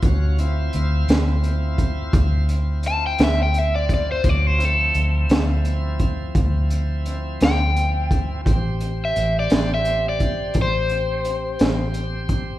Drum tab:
HH |xxxxxxxxxxxx|xxxxxxxxxxxx|xxxxxxxxxxxx|
SD |---o-----o--|---o-----o--|---o-----o--|
BD |o----oo----o|o----oo----o|o----oo----o|